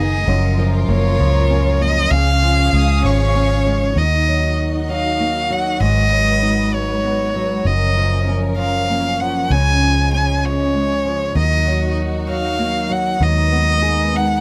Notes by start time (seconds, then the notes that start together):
Already playing: F#1 D#3 B3 D#4 G#4
0.00 D#5
0.27 F#1 F#2 F3 F4 A#4
0.58 F3
0.88 F#1 A#3 C#5
1.19 C#2 F3
1.50 C#4
1.81 A#3 D#5
2.11 C#2 C#3 C#4 G#4 F5
2.42 F3
2.73 C#2 G#3 D#6
3.03 G#1 F3 C#5 C#6
3.35 C#4
3.66 G#3
3.96 D#2 D#3 D#4 F#4 D#5
4.28 F#3
4.89 F#3 F5
5.20 A#3
5.50 F#3 F#5
5.80 G#1 G#2 G#3 B4 D#5
6.12 F#3
6.43 D#4
6.74 F#3 C#5
7.04 B3
7.35 F#3
7.65 F#1 F#2 F3 C#4 A#4 D#5
7.97 F3
8.28 C#4
8.57 F3 F5
8.90 A#3
9.20 F3 F#5
9.50 C#2 C#3 G#3 G#5
9.82 F3
10.13 C#4 G#5
10.43 F3 C#5
10.74 G#3
11.05 F3
11.35 D#2 D#3 F#3 D#4 F#4 D#5
11.67 F#3
12.28 F#3 F5
12.59 A#3
12.89 F#3 F#5
13.20 D#2 D#3 G#3 B3 D#4 D#5
13.52 B3
13.82 G#4
14.13 B3 F#5